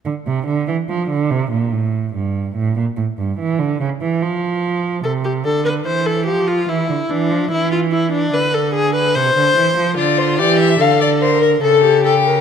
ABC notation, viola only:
X:1
M:3/4
L:1/16
Q:1/4=72
K:Dm
V:1 name="Viola"
z12 | z12 | A G A =B c A G F E2 D2 | E F E D =B A ^G B c4 |
F2 G2 A2 B2 A G A B |]